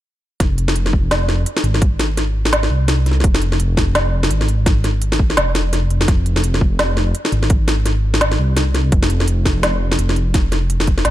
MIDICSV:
0, 0, Header, 1, 3, 480
1, 0, Start_track
1, 0, Key_signature, -4, "minor"
1, 0, Tempo, 355030
1, 544, Time_signature, 4, 2, 24, 8
1, 15015, End_track
2, 0, Start_track
2, 0, Title_t, "Detuned saw bass"
2, 0, Program_c, 0, 39
2, 543, Note_on_c, 0, 29, 94
2, 1007, Note_off_c, 0, 29, 0
2, 1018, Note_on_c, 0, 29, 98
2, 1965, Note_off_c, 0, 29, 0
2, 2212, Note_on_c, 0, 32, 95
2, 3642, Note_off_c, 0, 32, 0
2, 3658, Note_on_c, 0, 36, 94
2, 4365, Note_off_c, 0, 36, 0
2, 4381, Note_on_c, 0, 29, 98
2, 4847, Note_off_c, 0, 29, 0
2, 4860, Note_on_c, 0, 29, 95
2, 5806, Note_off_c, 0, 29, 0
2, 5825, Note_on_c, 0, 32, 94
2, 7248, Note_off_c, 0, 32, 0
2, 7257, Note_on_c, 0, 29, 102
2, 7965, Note_off_c, 0, 29, 0
2, 7981, Note_on_c, 0, 29, 97
2, 8206, Note_off_c, 0, 29, 0
2, 8224, Note_on_c, 0, 29, 94
2, 8688, Note_off_c, 0, 29, 0
2, 8701, Note_on_c, 0, 29, 90
2, 9647, Note_off_c, 0, 29, 0
2, 9903, Note_on_c, 0, 32, 95
2, 11327, Note_off_c, 0, 32, 0
2, 11344, Note_on_c, 0, 36, 93
2, 12048, Note_off_c, 0, 36, 0
2, 12060, Note_on_c, 0, 29, 97
2, 12526, Note_off_c, 0, 29, 0
2, 12542, Note_on_c, 0, 29, 90
2, 13487, Note_off_c, 0, 29, 0
2, 13505, Note_on_c, 0, 29, 98
2, 14208, Note_off_c, 0, 29, 0
2, 14220, Note_on_c, 0, 29, 96
2, 14926, Note_off_c, 0, 29, 0
2, 14945, Note_on_c, 0, 32, 99
2, 15015, Note_off_c, 0, 32, 0
2, 15015, End_track
3, 0, Start_track
3, 0, Title_t, "Drums"
3, 542, Note_on_c, 9, 36, 109
3, 544, Note_on_c, 9, 40, 51
3, 544, Note_on_c, 9, 42, 78
3, 677, Note_off_c, 9, 36, 0
3, 679, Note_off_c, 9, 40, 0
3, 679, Note_off_c, 9, 42, 0
3, 784, Note_on_c, 9, 42, 36
3, 919, Note_off_c, 9, 42, 0
3, 922, Note_on_c, 9, 40, 76
3, 1023, Note_on_c, 9, 42, 66
3, 1057, Note_off_c, 9, 40, 0
3, 1158, Note_off_c, 9, 42, 0
3, 1161, Note_on_c, 9, 40, 50
3, 1260, Note_on_c, 9, 36, 55
3, 1296, Note_off_c, 9, 40, 0
3, 1396, Note_off_c, 9, 36, 0
3, 1503, Note_on_c, 9, 38, 111
3, 1503, Note_on_c, 9, 40, 80
3, 1503, Note_on_c, 9, 42, 75
3, 1638, Note_off_c, 9, 38, 0
3, 1638, Note_off_c, 9, 40, 0
3, 1638, Note_off_c, 9, 42, 0
3, 1738, Note_on_c, 9, 40, 53
3, 1874, Note_off_c, 9, 40, 0
3, 1978, Note_on_c, 9, 42, 70
3, 2113, Note_off_c, 9, 42, 0
3, 2117, Note_on_c, 9, 40, 80
3, 2218, Note_on_c, 9, 42, 37
3, 2252, Note_off_c, 9, 40, 0
3, 2353, Note_off_c, 9, 42, 0
3, 2357, Note_on_c, 9, 40, 54
3, 2457, Note_on_c, 9, 36, 115
3, 2458, Note_on_c, 9, 42, 79
3, 2492, Note_off_c, 9, 40, 0
3, 2592, Note_off_c, 9, 36, 0
3, 2593, Note_off_c, 9, 42, 0
3, 2697, Note_on_c, 9, 40, 74
3, 2697, Note_on_c, 9, 42, 37
3, 2832, Note_off_c, 9, 40, 0
3, 2832, Note_off_c, 9, 42, 0
3, 2940, Note_on_c, 9, 40, 54
3, 2940, Note_on_c, 9, 42, 69
3, 3075, Note_off_c, 9, 40, 0
3, 3075, Note_off_c, 9, 42, 0
3, 3318, Note_on_c, 9, 40, 80
3, 3417, Note_on_c, 9, 38, 121
3, 3417, Note_on_c, 9, 42, 81
3, 3453, Note_off_c, 9, 40, 0
3, 3552, Note_off_c, 9, 38, 0
3, 3552, Note_off_c, 9, 42, 0
3, 3557, Note_on_c, 9, 40, 51
3, 3692, Note_off_c, 9, 40, 0
3, 3896, Note_on_c, 9, 40, 80
3, 3896, Note_on_c, 9, 42, 67
3, 4031, Note_off_c, 9, 40, 0
3, 4031, Note_off_c, 9, 42, 0
3, 4141, Note_on_c, 9, 40, 22
3, 4141, Note_on_c, 9, 42, 37
3, 4210, Note_off_c, 9, 40, 0
3, 4210, Note_on_c, 9, 40, 29
3, 4276, Note_off_c, 9, 42, 0
3, 4330, Note_off_c, 9, 40, 0
3, 4330, Note_on_c, 9, 40, 44
3, 4380, Note_on_c, 9, 36, 120
3, 4380, Note_on_c, 9, 42, 79
3, 4465, Note_off_c, 9, 40, 0
3, 4515, Note_off_c, 9, 36, 0
3, 4515, Note_off_c, 9, 42, 0
3, 4523, Note_on_c, 9, 40, 76
3, 4619, Note_on_c, 9, 42, 34
3, 4658, Note_off_c, 9, 40, 0
3, 4755, Note_off_c, 9, 42, 0
3, 4761, Note_on_c, 9, 40, 48
3, 4864, Note_on_c, 9, 42, 68
3, 4896, Note_off_c, 9, 40, 0
3, 4999, Note_off_c, 9, 42, 0
3, 5101, Note_on_c, 9, 36, 65
3, 5103, Note_on_c, 9, 40, 73
3, 5236, Note_off_c, 9, 36, 0
3, 5238, Note_off_c, 9, 40, 0
3, 5342, Note_on_c, 9, 38, 119
3, 5342, Note_on_c, 9, 40, 49
3, 5342, Note_on_c, 9, 42, 77
3, 5477, Note_off_c, 9, 38, 0
3, 5477, Note_off_c, 9, 40, 0
3, 5477, Note_off_c, 9, 42, 0
3, 5722, Note_on_c, 9, 40, 77
3, 5822, Note_on_c, 9, 42, 67
3, 5858, Note_off_c, 9, 40, 0
3, 5957, Note_off_c, 9, 42, 0
3, 5961, Note_on_c, 9, 40, 48
3, 6064, Note_on_c, 9, 42, 36
3, 6096, Note_off_c, 9, 40, 0
3, 6199, Note_off_c, 9, 42, 0
3, 6303, Note_on_c, 9, 36, 113
3, 6305, Note_on_c, 9, 40, 71
3, 6305, Note_on_c, 9, 42, 75
3, 6438, Note_off_c, 9, 36, 0
3, 6440, Note_off_c, 9, 40, 0
3, 6440, Note_off_c, 9, 42, 0
3, 6545, Note_on_c, 9, 40, 47
3, 6545, Note_on_c, 9, 42, 35
3, 6681, Note_off_c, 9, 40, 0
3, 6681, Note_off_c, 9, 42, 0
3, 6781, Note_on_c, 9, 42, 60
3, 6917, Note_off_c, 9, 42, 0
3, 6923, Note_on_c, 9, 40, 70
3, 7023, Note_on_c, 9, 36, 61
3, 7059, Note_off_c, 9, 40, 0
3, 7158, Note_off_c, 9, 36, 0
3, 7165, Note_on_c, 9, 40, 50
3, 7262, Note_on_c, 9, 38, 117
3, 7262, Note_on_c, 9, 42, 75
3, 7300, Note_off_c, 9, 40, 0
3, 7397, Note_off_c, 9, 38, 0
3, 7397, Note_off_c, 9, 42, 0
3, 7503, Note_on_c, 9, 40, 73
3, 7503, Note_on_c, 9, 42, 36
3, 7639, Note_off_c, 9, 40, 0
3, 7639, Note_off_c, 9, 42, 0
3, 7745, Note_on_c, 9, 40, 48
3, 7745, Note_on_c, 9, 42, 64
3, 7880, Note_off_c, 9, 40, 0
3, 7880, Note_off_c, 9, 42, 0
3, 7983, Note_on_c, 9, 42, 34
3, 8118, Note_off_c, 9, 42, 0
3, 8123, Note_on_c, 9, 40, 76
3, 8221, Note_on_c, 9, 36, 115
3, 8222, Note_off_c, 9, 40, 0
3, 8222, Note_on_c, 9, 40, 47
3, 8222, Note_on_c, 9, 42, 73
3, 8356, Note_off_c, 9, 36, 0
3, 8358, Note_off_c, 9, 40, 0
3, 8358, Note_off_c, 9, 42, 0
3, 8463, Note_on_c, 9, 42, 35
3, 8598, Note_off_c, 9, 42, 0
3, 8601, Note_on_c, 9, 40, 68
3, 8703, Note_on_c, 9, 42, 61
3, 8736, Note_off_c, 9, 40, 0
3, 8838, Note_off_c, 9, 42, 0
3, 8844, Note_on_c, 9, 40, 50
3, 8941, Note_on_c, 9, 36, 57
3, 8980, Note_off_c, 9, 40, 0
3, 9076, Note_off_c, 9, 36, 0
3, 9182, Note_on_c, 9, 38, 118
3, 9182, Note_on_c, 9, 40, 72
3, 9182, Note_on_c, 9, 42, 72
3, 9318, Note_off_c, 9, 38, 0
3, 9318, Note_off_c, 9, 40, 0
3, 9318, Note_off_c, 9, 42, 0
3, 9422, Note_on_c, 9, 40, 53
3, 9557, Note_off_c, 9, 40, 0
3, 9662, Note_on_c, 9, 42, 61
3, 9797, Note_off_c, 9, 42, 0
3, 9801, Note_on_c, 9, 40, 70
3, 9900, Note_on_c, 9, 42, 32
3, 9936, Note_off_c, 9, 40, 0
3, 10036, Note_off_c, 9, 42, 0
3, 10040, Note_on_c, 9, 40, 50
3, 10139, Note_on_c, 9, 42, 75
3, 10141, Note_on_c, 9, 36, 111
3, 10176, Note_off_c, 9, 40, 0
3, 10274, Note_off_c, 9, 42, 0
3, 10276, Note_off_c, 9, 36, 0
3, 10380, Note_on_c, 9, 40, 76
3, 10380, Note_on_c, 9, 42, 33
3, 10515, Note_off_c, 9, 40, 0
3, 10515, Note_off_c, 9, 42, 0
3, 10621, Note_on_c, 9, 40, 49
3, 10621, Note_on_c, 9, 42, 59
3, 10756, Note_off_c, 9, 40, 0
3, 10756, Note_off_c, 9, 42, 0
3, 11003, Note_on_c, 9, 40, 75
3, 11100, Note_on_c, 9, 38, 113
3, 11100, Note_on_c, 9, 42, 70
3, 11138, Note_off_c, 9, 40, 0
3, 11236, Note_off_c, 9, 38, 0
3, 11236, Note_off_c, 9, 42, 0
3, 11242, Note_on_c, 9, 40, 52
3, 11377, Note_off_c, 9, 40, 0
3, 11581, Note_on_c, 9, 40, 78
3, 11581, Note_on_c, 9, 42, 62
3, 11716, Note_off_c, 9, 40, 0
3, 11716, Note_off_c, 9, 42, 0
3, 11823, Note_on_c, 9, 40, 51
3, 11823, Note_on_c, 9, 42, 34
3, 11959, Note_off_c, 9, 40, 0
3, 11959, Note_off_c, 9, 42, 0
3, 12062, Note_on_c, 9, 36, 109
3, 12062, Note_on_c, 9, 42, 71
3, 12197, Note_off_c, 9, 36, 0
3, 12197, Note_off_c, 9, 42, 0
3, 12203, Note_on_c, 9, 40, 80
3, 12302, Note_on_c, 9, 42, 35
3, 12338, Note_off_c, 9, 40, 0
3, 12437, Note_off_c, 9, 42, 0
3, 12442, Note_on_c, 9, 40, 51
3, 12542, Note_on_c, 9, 42, 64
3, 12577, Note_off_c, 9, 40, 0
3, 12677, Note_off_c, 9, 42, 0
3, 12783, Note_on_c, 9, 36, 58
3, 12784, Note_on_c, 9, 40, 82
3, 12918, Note_off_c, 9, 36, 0
3, 12919, Note_off_c, 9, 40, 0
3, 13022, Note_on_c, 9, 38, 107
3, 13022, Note_on_c, 9, 40, 55
3, 13022, Note_on_c, 9, 42, 75
3, 13158, Note_off_c, 9, 38, 0
3, 13158, Note_off_c, 9, 40, 0
3, 13158, Note_off_c, 9, 42, 0
3, 13406, Note_on_c, 9, 40, 80
3, 13503, Note_on_c, 9, 42, 65
3, 13541, Note_off_c, 9, 40, 0
3, 13639, Note_off_c, 9, 42, 0
3, 13644, Note_on_c, 9, 40, 52
3, 13741, Note_on_c, 9, 42, 35
3, 13779, Note_off_c, 9, 40, 0
3, 13877, Note_off_c, 9, 42, 0
3, 13982, Note_on_c, 9, 40, 81
3, 13982, Note_on_c, 9, 42, 80
3, 13983, Note_on_c, 9, 36, 114
3, 14117, Note_off_c, 9, 40, 0
3, 14117, Note_off_c, 9, 42, 0
3, 14119, Note_off_c, 9, 36, 0
3, 14223, Note_on_c, 9, 40, 53
3, 14223, Note_on_c, 9, 42, 35
3, 14358, Note_off_c, 9, 40, 0
3, 14358, Note_off_c, 9, 42, 0
3, 14464, Note_on_c, 9, 42, 67
3, 14599, Note_off_c, 9, 42, 0
3, 14603, Note_on_c, 9, 40, 83
3, 14701, Note_on_c, 9, 42, 36
3, 14703, Note_on_c, 9, 36, 58
3, 14738, Note_off_c, 9, 40, 0
3, 14836, Note_off_c, 9, 42, 0
3, 14838, Note_off_c, 9, 36, 0
3, 14840, Note_on_c, 9, 40, 54
3, 14938, Note_on_c, 9, 38, 64
3, 14938, Note_on_c, 9, 42, 82
3, 14975, Note_off_c, 9, 40, 0
3, 15015, Note_off_c, 9, 38, 0
3, 15015, Note_off_c, 9, 42, 0
3, 15015, End_track
0, 0, End_of_file